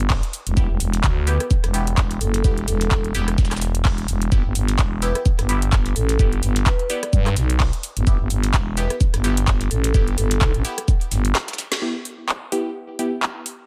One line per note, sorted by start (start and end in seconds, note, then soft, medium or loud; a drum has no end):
0.00 0.21 G1 medium
0.10 kick loud
0.10 snare loud
0.10 clap loud
0.10 open hi-hat medium
0.23 closed hi-hat medium
0.33 open hi-hat loud
0.33 shaker medium
0.47 0.55 E1 loud
0.47 closed hi-hat medium
0.57 0.68 E1 loud
0.57 0.69 B3 medium
0.57 0.69 E4 medium
0.57 0.69 G4 medium
0.57 kick loud
0.57 shaker medium
0.70 0.79 E1 loud
0.80 1.02 E1 medium
0.80 open hi-hat loud
0.80 shaker medium
0.93 closed hi-hat medium
0.93 closed hi-hat soft
1.04 1.38 D2 loud
1.04 kick loud
1.04 snare loud
1.04 clap loud
1.04 shaker medium
1.27 1.45 B3 medium
1.27 1.45 E4 medium
1.27 1.45 G4 loud
1.27 1.43 B4 medium
1.27 open hi-hat loud
1.27 shaker medium
1.40 cross-stick medium
1.40 closed hi-hat medium
1.51 kick loud
1.51 shaker medium
1.64 1.96 E1 medium
1.64 cross-stick medium
1.64 closed hi-hat soft
1.74 1.86 B3 medium
1.74 1.86 E4 medium
1.74 1.86 G4 loud
1.74 open hi-hat loud
1.74 shaker medium
1.87 closed hi-hat medium
1.97 2.19 E1 medium
1.97 kick loud
1.97 snare loud
1.97 clap loud
1.97 shaker medium
2.11 closed hi-hat soft
2.21 2.43 F#1 medium
2.21 2.29 A4 medium
2.21 open hi-hat loud
2.21 shaker medium
2.34 2.41 A4 medium
2.34 closed hi-hat soft
2.34 closed hi-hat medium
2.44 2.66 E1 loud
2.44 3.12 B3 medium
2.44 3.12 E4 medium
2.44 3.12 G4 medium
2.44 kick loud
2.44 shaker medium
2.58 closed hi-hat soft
2.68 2.90 E1 loud
2.68 3.04 A4 medium
2.68 open hi-hat loud
2.68 shaker medium
2.81 closed hi-hat soft
2.81 closed hi-hat medium
2.91 3.13 E1 loud
2.91 kick loud
2.91 snare loud
2.91 clap loud
2.91 shaker medium
3.04 closed hi-hat soft
3.15 3.36 E1 medium
3.15 3.27 B3 medium
3.15 3.27 E4 medium
3.15 3.27 G4 loud
3.15 open hi-hat loud
3.15 shaker medium
3.28 cross-stick medium
3.28 closed hi-hat medium
3.38 3.83 E1 medium
3.38 kick loud
3.38 snare medium
3.38 shaker medium
3.45 snare medium
3.45 shaker medium
3.51 cross-stick medium
3.51 snare medium
3.51 clap soft
3.51 open hi-hat medium
3.51 shaker medium
3.56 snare medium
3.56 shaker medium
3.61 snare medium
3.61 open hi-hat loud
3.61 shaker medium
3.75 closed hi-hat medium
3.85 4.07 E1 loud
3.85 kick loud
3.85 snare loud
3.85 clap loud
3.85 open hi-hat medium
3.98 closed hi-hat soft
4.08 4.30 E1 medium
4.08 open hi-hat loud
4.08 shaker medium
4.22 closed hi-hat medium
4.32 4.43 G1 loud
4.32 4.44 B3 medium
4.32 4.44 E4 medium
4.32 4.44 G4 medium
4.32 kick loud
4.32 shaker medium
4.45 4.54 G1 loud
4.55 4.77 G1 medium
4.55 open hi-hat loud
4.55 shaker medium
4.68 closed hi-hat medium
4.68 closed hi-hat soft
4.79 5.13 E1 loud
4.79 kick loud
4.79 snare loud
4.79 clap loud
4.79 shaker medium
5.02 5.20 B3 medium
5.02 5.20 E4 medium
5.02 5.20 G4 loud
5.02 5.18 B4 medium
5.02 open hi-hat loud
5.02 shaker medium
5.15 cross-stick medium
5.15 closed hi-hat medium
5.26 kick loud
5.26 shaker medium
5.39 5.71 G1 medium
5.39 cross-stick medium
5.39 closed hi-hat soft
5.49 5.61 B3 medium
5.49 5.61 E4 medium
5.49 5.61 G4 medium
5.49 open hi-hat loud
5.49 shaker medium
5.62 closed hi-hat medium
5.72 5.94 G1 loud
5.72 kick loud
5.72 snare loud
5.72 clap loud
5.72 shaker medium
5.86 closed hi-hat soft
5.96 6.18 A1 medium
5.96 6.04 A4 medium
5.96 open hi-hat loud
5.96 shaker medium
6.09 6.16 A4 medium
6.09 closed hi-hat medium
6.09 closed hi-hat soft
6.19 6.41 G1 medium
6.19 6.87 B3 medium
6.19 6.87 E4 medium
6.19 6.87 G4 medium
6.19 kick loud
6.19 shaker medium
6.33 closed hi-hat soft
6.43 6.65 G1 loud
6.43 open hi-hat loud
6.43 shaker medium
6.56 closed hi-hat medium
6.56 closed hi-hat soft
6.66 6.75 B4 medium
6.66 kick loud
6.66 snare loud
6.66 clap loud
6.66 shaker medium
6.79 6.86 B4 medium
6.79 closed hi-hat soft
6.90 7.02 B3 medium
6.90 7.02 E4 medium
6.90 7.02 G4 loud
6.90 6.98 D5 medium
6.90 open hi-hat medium
6.90 shaker medium
7.03 7.09 D5 medium
7.03 cross-stick medium
7.03 closed hi-hat medium
7.13 7.35 G2 loud
7.13 kick loud
7.13 shaker medium
7.26 cross-stick medium
7.26 clap soft
7.26 open hi-hat medium
7.36 7.71 B1 medium
7.36 snare medium
7.36 open hi-hat loud
7.36 shaker medium
7.50 closed hi-hat medium
7.60 kick loud
7.60 snare loud
7.60 clap loud
7.60 open hi-hat medium
7.73 closed hi-hat soft
7.83 open hi-hat loud
7.83 shaker medium
7.97 8.05 G1 loud
7.97 closed hi-hat medium
8.07 8.18 G1 medium
8.07 8.19 B3 medium
8.07 8.19 E4 medium
8.07 8.19 G4 medium
8.07 kick loud
8.07 shaker medium
8.20 8.29 G1 loud
8.30 8.52 G1 medium
8.30 open hi-hat loud
8.30 shaker medium
8.43 closed hi-hat soft
8.43 closed hi-hat medium
8.54 8.88 E1 loud
8.54 kick loud
8.54 snare loud
8.54 clap loud
8.54 shaker medium
8.77 8.95 B3 medium
8.77 8.95 E4 medium
8.77 8.95 G4 loud
8.77 8.93 B4 medium
8.77 open hi-hat medium
8.77 shaker medium
8.90 cross-stick medium
8.90 closed hi-hat medium
9.01 kick loud
9.01 shaker medium
9.14 9.46 G1 loud
9.14 cross-stick medium
9.14 closed hi-hat soft
9.14 closed hi-hat medium
9.24 9.36 B3 medium
9.24 9.36 E4 medium
9.24 9.36 G4 loud
9.24 open hi-hat medium
9.24 shaker medium
9.37 closed hi-hat medium
9.47 9.69 G1 loud
9.47 kick loud
9.47 snare loud
9.47 clap loud
9.47 shaker medium
9.61 closed hi-hat soft
9.61 closed hi-hat medium
9.71 9.93 A1 medium
9.71 9.79 A4 medium
9.71 open hi-hat loud
9.71 shaker medium
9.84 9.91 A4 medium
9.84 closed hi-hat soft
9.84 closed hi-hat medium
9.94 10.16 G1 medium
9.94 10.62 B3 medium
9.94 10.62 E4 medium
9.94 10.62 G4 medium
9.94 kick loud
9.94 shaker medium
10.08 closed hi-hat soft
10.18 10.40 G1 loud
10.18 10.54 A4 medium
10.18 open hi-hat loud
10.18 shaker medium
10.31 closed hi-hat soft
10.31 closed hi-hat medium
10.41 10.52 B1 loud
10.41 kick loud
10.41 snare loud
10.41 clap loud
10.41 shaker medium
10.54 10.63 A1 loud
10.54 closed hi-hat soft
10.65 10.77 B3 medium
10.65 10.77 E4 medium
10.65 10.77 G4 loud
10.65 open hi-hat loud
10.65 shaker medium
10.78 cross-stick medium
10.78 closed hi-hat medium
10.88 kick loud
10.88 shaker medium
11.01 open hi-hat medium
11.12 11.33 G1 medium
11.12 snare medium
11.12 open hi-hat loud
11.12 shaker medium
11.25 closed hi-hat medium
11.35 snare loud
11.35 clap loud
11.35 shaker medium
11.48 snare medium
11.48 closed hi-hat medium
11.48 shaker medium
11.53 snare medium
11.53 shaker medium
11.58 snare loud
11.58 open hi-hat loud
11.58 shaker medium
11.72 snare medium
11.72 closed hi-hat medium
11.82 11.94 B3 medium
11.82 11.94 E4 medium
11.82 11.94 G4 medium
12.05 open hi-hat medium
12.29 clap loud
12.52 12.70 B3 medium
12.52 12.70 E4 medium
12.52 12.70 G4 loud
12.52 open hi-hat medium
12.99 13.11 B3 medium
12.99 13.11 E4 medium
12.99 13.11 G4 medium
12.99 open hi-hat medium
13.23 clap loud
13.46 open hi-hat medium